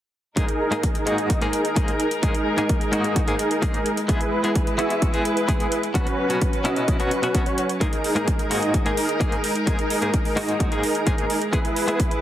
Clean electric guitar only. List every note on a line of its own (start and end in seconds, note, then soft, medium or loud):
0.36 0.48 G#2 medium
0.36 0.48 G#3 soft
0.36 0.48 A#3 medium
0.36 0.48 D#4 medium
0.36 0.48 G#4 medium
0.71 0.83 G#2 medium
0.71 0.83 G#3 medium
0.71 0.83 A#3 medium
0.71 0.83 D#4 medium
0.71 0.83 G#4 medium
1.06 1.39 G#2 medium
1.06 1.39 G#3 medium
1.06 1.39 A#3 medium
1.06 1.39 D#4 medium
1.06 1.39 F#4 medium
1.41 1.52 G#2 medium
1.41 1.53 G#3 medium
1.41 1.53 A#3 medium
1.41 1.53 D#4 medium
1.41 1.53 G#4 loud
1.76 1.94 G#2 medium
1.76 1.94 G#3 medium
1.76 1.94 A#3 medium
1.76 1.94 D#4 medium
1.76 1.94 G#4 medium
2.22 2.34 G#2 medium
2.22 2.34 G#3 medium
2.22 2.34 A#3 medium
2.22 2.34 D#4 medium
2.22 2.34 G#4 medium
2.57 2.69 G#2 medium
2.57 2.69 G#3 medium
2.57 2.69 A#3 medium
2.57 2.69 D#4 medium
2.57 2.69 G#4 medium
2.92 3.25 G#2 medium
2.92 3.25 G#3 medium
2.92 3.25 A#3 medium
2.92 3.25 D#4 medium
2.92 3.25 F#4 medium
3.27 3.38 G#2 medium
3.27 3.39 G#3 medium
3.27 3.39 A#3 medium
3.27 3.39 D#4 medium
3.27 3.39 G#4 loud
3.62 3.80 G#2 medium
3.62 3.80 G#3 medium
3.62 3.80 A#3 medium
3.62 3.80 D#4 medium
3.62 3.81 G#4 medium
4.08 4.20 G#3 medium
4.08 4.20 B3 medium
4.08 4.20 E4 medium
4.08 4.20 G#4 medium
4.43 4.55 G#3 medium
4.43 4.55 B3 medium
4.43 4.55 E4 medium
4.43 4.55 G#4 medium
4.78 5.11 G#3 medium
4.78 5.11 B3 medium
4.78 5.11 E4 medium
4.78 5.11 F#4 medium
5.13 5.24 G#3 medium
5.13 5.25 B3 medium
5.13 5.25 E4 medium
5.13 5.25 G#4 loud
5.48 5.66 G#3 medium
5.48 5.66 B3 medium
5.48 5.66 E4 medium
5.48 5.67 G#4 medium
5.94 6.06 B2 medium
5.94 6.06 F#3 medium
5.94 6.06 B3 medium
5.94 6.06 C#4 medium
5.94 6.06 F#4 medium
6.29 6.41 B2 medium
6.29 6.41 F#3 medium
6.29 6.41 B3 medium
6.29 6.41 C#4 medium
6.29 6.41 F#4 medium
6.64 6.97 B2 medium
6.64 6.97 F#3 medium
6.64 6.97 B3 medium
6.64 6.97 C#4 medium
6.64 6.97 E4 medium
6.99 7.10 B2 medium
6.99 7.11 F#3 medium
6.99 7.11 B3 medium
6.99 7.11 C#4 medium
6.99 7.11 F#4 loud
7.22 7.33 B2 medium
7.22 7.33 F#3 medium
7.22 7.33 B3 medium
7.22 7.33 C#4 medium
7.22 7.33 F#4 medium
7.34 7.45 B2 medium
7.34 7.46 F#3 medium
7.34 7.46 B3 medium
7.34 7.46 C#4 medium
7.34 7.46 F#4 medium
7.80 7.92 G#2 medium
7.80 7.92 G#3 medium
7.80 7.92 A#3 medium
7.80 7.92 D#4 medium
7.80 7.92 G#4 medium
8.15 8.27 G#2 medium
8.15 8.27 G#3 medium
8.15 8.27 A#3 medium
8.15 8.27 D#4 medium
8.15 8.27 G#4 medium
8.50 8.83 G#2 medium
8.50 8.83 G#3 medium
8.50 8.83 A#3 medium
8.50 8.83 D#4 medium
8.50 8.83 F#4 medium
8.85 8.97 G#2 medium
8.85 8.97 G#3 medium
8.85 8.97 A#3 medium
8.85 8.97 D#4 medium
8.85 8.97 G#4 loud
9.20 9.38 G#2 medium
9.20 9.38 G#3 medium
9.20 9.38 A#3 medium
9.20 9.38 D#4 medium
9.20 9.39 G#4 medium
9.66 9.78 G#2 medium
9.66 9.78 G#3 medium
9.66 9.78 A#3 medium
9.66 9.78 D#4 medium
9.66 9.79 G#4 medium
10.01 10.13 G#2 medium
10.01 10.13 G#3 medium
10.01 10.13 A#3 medium
10.01 10.13 D#4 soft
10.01 10.13 G#4 medium
10.36 10.69 G#2 medium
10.36 10.69 G#3 medium
10.36 10.69 A#3 medium
10.36 10.69 D#4 medium
10.36 10.69 F#4 medium
10.71 10.83 G#2 medium
10.71 10.83 G#3 medium
10.71 10.83 A#3 medium
10.71 10.83 D#4 medium
10.71 10.83 G#4 loud
11.06 11.24 G#2 medium
11.06 11.24 G#3 medium
11.06 11.24 A#3 medium
11.06 11.25 D#4 medium
11.06 11.25 G#4 medium
11.53 11.64 G#3 medium
11.53 11.64 B3 medium
11.53 11.64 E4 medium
11.53 11.65 G#4 medium
11.87 11.99 G#3 medium
11.87 11.99 B3 medium
11.87 11.99 E4 medium
11.87 11.99 G#4 medium